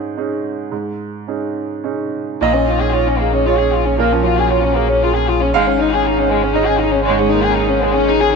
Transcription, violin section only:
2.41 A#3
2.54 C#4
2.67 F4
2.81 G#4
2.92 F4
3.07 C#4
3.18 A#3
3.33 C#4
3.46 F4
3.59 G#4
3.74 F4
3.86 C#4
3.99 A#3
4.12 C#4
4.24 F4
4.39 G#4
4.50 F4
4.62 C#4
4.75 A#3
4.89 C#4
5.03 F4
5.15 G#4
5.29 F4
5.41 C#4
5.54 G#3
5.67 C#4
5.79 D#4
5.93 G#4
6.05 D#4
6.18 C#4
6.30 G#3
6.42 C#4
6.53 D#4
6.67 G#4
6.80 D#4
6.92 C#4
7.04 G#3
7.18 C#4
7.31 D#4
7.43 G#4
7.54 D#4
7.68 C#4
7.82 G#3
7.94 C#4
8.08 D#4
8.20 G#4

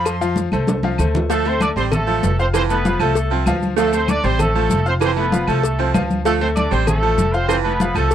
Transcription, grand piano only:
Already playing: F3 F4 F5
0.21 F3 F4 F5
0.53 A3 A4 C5
0.84 F3 F4 F5
1.00 A3 A4 C5
1.30 F3 F4 F5
1.46 A3 A4 A5
1.76 C4 C5 C6
2.08 A3 A4 A5
2.39 F4 F5 F6
2.70 A3 A4 A5
2.86 F3 F4 F5
3.02 A3 A4 A5
3.32 C4 C5 C6
3.48 F3 F4 F5
3.78 F3 F4 F5
3.92 A3 A4 A5
4.24 C4 C5 C6
4.55 A3 A4 A5
4.86 F4 F5 F6
5.17 A3 A4 A5
5.32 F3 F4 F5
5.48 A3 A4 A5
5.79 C4 C5 C6
5.94 F3 F4 F5
6.26 F3 F4 F5
6.41 A3 A4 A5
6.72 C4 C5 C6
7.02 A3 A4 A5
7.34 F4 F5 F6
7.65 A3 A4 A5
7.81 F3 F4 F5
7.97 A3 A4 A5

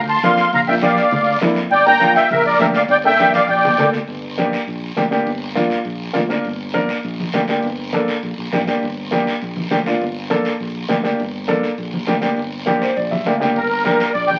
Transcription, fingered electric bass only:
Already playing: D2
0.23 F2
0.53 A#1
1.12 D2
1.42 F2
1.71 G1
2.30 A#1
2.59 D2
2.88 G1
3.49 A#1
3.78 D2
4.08 G1
4.67 A#1
4.96 D2
5.26 G1
5.85 A#1
6.15 D2
6.45 G1
7.04 A#1
7.34 D2
7.63 G1
8.23 A#1
8.38 A#1
8.53 A1
8.68 G1
8.83 G1
9.42 A#1
9.71 D2
10.01 G1
10.61 A#1
10.89 D2
11.20 G1
11.78 A#1
12.08 D2
12.37 G1
12.97 A#1
13.26 D2
13.56 G1
14.15 A#1

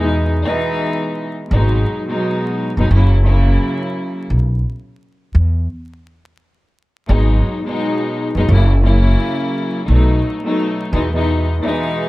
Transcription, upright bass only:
Already playing: E2
1.51 G#1
2.77 F#1
2.91 F#1
4.30 B1
5.35 E2
7.09 G#1
8.35 F#1
8.49 F#1
9.88 B1
10.93 E2

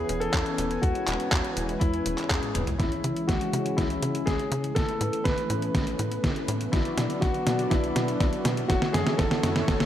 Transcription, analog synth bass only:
0.09 E1
0.34 E2
0.58 E1
0.83 E2
1.08 E1
1.32 E2
1.57 E1
1.81 E2
2.06 E1
2.30 E2
2.55 E1
2.80 C#2
3.04 C#3
3.29 C#2
3.53 C#3
3.78 C#2
4.03 C#3
4.27 C#2
4.52 C#3
4.76 A1
5.01 A2
5.25 A1
5.50 A2
5.75 A1
5.99 A2
6.24 A1
6.48 A2
6.73 B1
6.97 B2
7.22 B1
7.47 B2
7.71 B1
7.96 B2
8.21 B1
8.45 B2
8.70 F#1
8.94 F#2
9.19 F#1
9.43 F#2
9.68 F#1

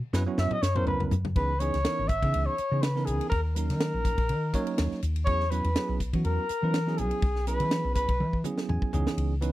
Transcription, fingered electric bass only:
0.13 F#2
0.38 F#2
0.51 muted fingered electric bass stroke
0.62 F#2
0.87 C#2
1.11 F#2
1.36 C#2
1.74 C#2
1.99 G#1
2.23 C#3
2.34 C#2
2.59 muted fingered electric bass stroke
2.72 C#3
3.07 C#2
3.32 D#2
3.70 D#3
3.94 A#1
4.18 A#1
4.30 D#3
4.79 D#2
5.03 D#2
5.27 E2
5.65 E2
5.89 B1
6.14 E3
6.25 E2
6.50 muted fingered electric bass stroke
6.63 E3
6.99 B1
7.23 B1
7.60 E3
7.84 B1
8.09 B1
8.20 E3
8.69 E2
8.93 C#2
9.17 C#2

